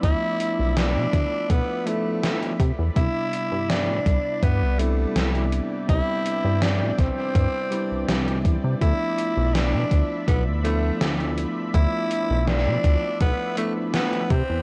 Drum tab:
HH |x-x-x-x-x-x-xxx-|x-x-x-x-x-x-xxx-|x-x-x-x-x-x-xxx-|x-x-x-x-x-x-xxx-|
SD |----o-o-----o---|----o-------o---|----o-o-----o---|----o-------o---|
BD |o-----o-o-----o-|o-----o-o-------|o-----o-o-----o-|o-----o-o-------|

HH |x-x-x-x-x-x-xxx-|
SD |----o-o-----o---|
BD |o-----o-o-----o-|